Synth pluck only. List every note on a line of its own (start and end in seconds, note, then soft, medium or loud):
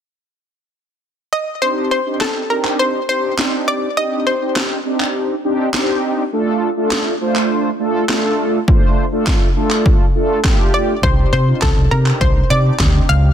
1.33 1.46 D#5 loud
1.62 1.90 C5 loud
1.91 2.19 C5 medium
2.21 2.48 A4 medium
2.50 2.78 A#4 medium
2.79 3.08 C5 loud
3.09 3.70 C5 medium
3.68 3.98 D5 medium
3.97 4.28 D#5 loud
4.27 5.40 C5 medium
10.74 10.87 D5 medium
11.03 11.32 C5 medium
11.33 11.46 C5 medium
11.62 11.92 A4 medium
11.91 12.22 A#4 medium
12.21 12.51 C5 loud
12.50 13.11 D5 loud
13.09 13.33 F5 loud